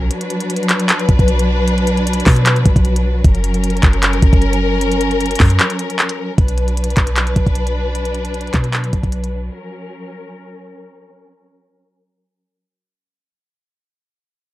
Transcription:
Already playing: F#3
0.11 D4 B4, closed hi-hat
0.21 closed hi-hat
0.30 closed hi-hat
0.40 closed hi-hat
0.50 closed hi-hat
0.56 closed hi-hat
0.63 closed hi-hat
0.69 clap, closed hi-hat
0.80 closed hi-hat
0.89 clap, closed hi-hat
0.99 closed hi-hat
1.09 B1, kick, closed hi-hat
1.19 B1, kick, closed hi-hat
1.28 closed hi-hat
1.39 closed hi-hat
1.68 closed hi-hat
1.78 closed hi-hat
1.87 closed hi-hat
1.97 closed hi-hat
2.07 closed hi-hat
2.13 closed hi-hat
2.20 closed hi-hat
2.26 B2, kick, clap, open hi-hat
2.36 closed hi-hat
2.46 clap, closed hi-hat
2.56 closed hi-hat
2.66 B1, kick, closed hi-hat
2.76 B1, kick, closed hi-hat
2.85 closed hi-hat
2.96 closed hi-hat
3.24 F#1 C#4 A#4, kick, closed hi-hat
3.35 closed hi-hat
3.44 closed hi-hat
3.54 closed hi-hat
3.64 closed hi-hat
3.70 closed hi-hat
3.77 closed hi-hat
3.83 F#1, kick, clap, closed hi-hat
3.93 closed hi-hat
4.03 clap, closed hi-hat
4.13 closed hi-hat
4.22 F#1, kick, closed hi-hat
4.33 F#1, kick, closed hi-hat
4.42 closed hi-hat
4.53 closed hi-hat
4.81 closed hi-hat
4.92 closed hi-hat
5.01 closed hi-hat
5.11 closed hi-hat
5.21 closed hi-hat
5.26 closed hi-hat
5.31 closed hi-hat
5.36 closed hi-hat
5.40 F#2, kick, clap, open hi-hat
5.50 closed hi-hat
5.59 clap, closed hi-hat
5.70 closed hi-hat
5.79 closed hi-hat
5.90 closed hi-hat
5.99 clap, closed hi-hat
6.09 closed hi-hat
6.38 B1 F#3 D4 B4, kick, closed hi-hat
6.48 closed hi-hat
6.58 closed hi-hat
6.68 closed hi-hat
6.77 closed hi-hat
6.84 closed hi-hat
6.90 closed hi-hat
6.97 B1, kick, clap, closed hi-hat
7.07 closed hi-hat
7.16 clap, closed hi-hat
7.27 closed hi-hat
7.36 B1, kick, closed hi-hat
7.47 B1, kick, closed hi-hat
7.55 closed hi-hat
7.67 closed hi-hat
7.95 closed hi-hat
8.05 closed hi-hat
8.15 closed hi-hat
8.25 closed hi-hat
8.34 closed hi-hat
8.41 closed hi-hat
8.47 closed hi-hat
8.54 B2, kick, clap, closed hi-hat
8.64 closed hi-hat
8.73 clap, closed hi-hat
8.84 closed hi-hat
8.93 B1, kick, closed hi-hat
9.03 B1, kick, closed hi-hat
9.12 closed hi-hat
9.24 closed hi-hat
9.52 C#4 A#4

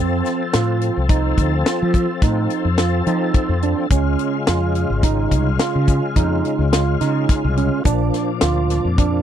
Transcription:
Already playing: F2 F3 C4
0.00 A4
0.25 snare, closed hi-hat, shaker
0.53 A2 F4, snare, closed hi-hat
0.81 closed hi-hat
0.97 C2
1.09 D#4, kick, closed hi-hat, shaker
1.38 D2, kick, closed hi-hat, shaker
1.66 F4, snare, closed hi-hat, shaker
1.82 F3
1.94 kick, closed hi-hat, shaker
2.22 A2 D#4, kick, snare, closed hi-hat
2.50 closed hi-hat
2.65 F2
2.78 F4, snare, closed hi-hat
3.06 F3 D#4, closed hi-hat, shaker
3.34 kick, closed hi-hat
3.49 F2
3.62 D4, closed hi-hat
3.89 C#2 C#3 G#3 C#4 F4, kick, closed hi-hat, shaker
4.19 closed hi-hat, shaker
4.47 F2 F4, snare, closed hi-hat
4.75 closed hi-hat
4.90 G#1
5.03 D#4, kick, closed hi-hat, shaker
5.31 C2, kick, closed hi-hat, shaker
5.59 F4, snare, closed hi-hat, shaker
5.75 C#3
5.88 kick, closed hi-hat, shaker
6.16 F2 D#4, kick, closed hi-hat
6.45 closed hi-hat
6.58 C#2
6.72 F4, snare, closed hi-hat
7.01 C#3 D#4, snare, closed hi-hat, shaker
7.29 kick, snare, closed hi-hat
7.44 C2
7.57 C#4, closed hi-hat
7.84 A#1 A#2 F3 D4, kick, closed hi-hat, shaker
8.14 snare, closed hi-hat, shaker
8.41 D2 F4, snare, closed hi-hat
8.70 snare, closed hi-hat
8.85 F2
8.98 D4, kick, closed hi-hat, shaker

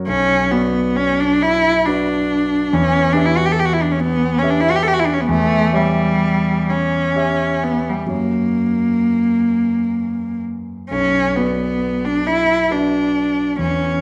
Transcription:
0.07 B1 C#4
0.51 B3 F#4 B4 D5
0.96 C#4
1.20 D4
1.42 E4
1.86 D4 F#4 B4 D5
2.73 E2 C#4
3.13 D4 G4 B4 E5
3.25 E4
3.37 F#4
3.46 G4
3.52 A4
3.59 G4
3.65 F#4
3.73 E4
3.82 D4
3.92 C#4
4.00 B3
4.38 C#4
4.43 G4 B4 E5
4.50 D4
4.61 E4
4.71 F#4
4.76 G4
4.83 A4
4.88 G4
4.93 F#4
5.00 E4
5.06 D4
5.14 C#4
5.21 B3
5.28 E2 A3
5.73 G3 G4 C#5 E5
6.70 C#4
7.15 G4 C#5 E5
7.63 B3
7.89 G3
8.06 F#2 F#4 C#5
8.12 A#3
10.90 B1 C#4
11.36 B3 F#4 B4 D5
12.05 D4
12.27 E4
12.71 D4 F#4 B4 D5
13.59 E2 C#4

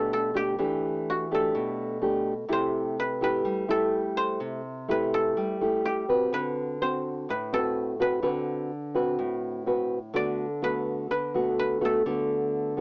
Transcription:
Already playing: B2 A3 D4 G4 A4 B4 D5
0.13 A4
0.34 A3 D4 G4
0.58 E3 A3 D4 G4
1.10 F#4
1.31 A3 D4 G4 A4
1.55 B2
2.02 A3 D4 G4
2.49 C3 A3 E4 G4 C5
3.00 B4
3.21 A3 E4 G4 B4
3.45 G3
3.68 A3 E4 G4 A4
4.17 C5
4.40 C3
4.88 A3 E4 G4 B4
5.14 A4
5.37 G3
5.61 A3 E4 G4
5.86 G4
6.09 C4 F#4 B4
6.33 D3 B4
6.82 C4 F#4 C5
7.29 A2 B4
7.53 C4 F#4 A4 B4
8.00 C4 F#4 B4
8.23 D3 C4 F#4 B4
8.95 C4 F#4 B4
9.19 A2
9.66 C4 F#4 B4
10.14 D3 A3 B3 F#4 D5
10.62 A3 B3 F#4 B4
11.11 D3 B4
11.34 A3 B3 F#4
11.59 B4
11.81 A3 B3 F#4 A4
12.06 D3 A3 B3 F#4
12.77 A3

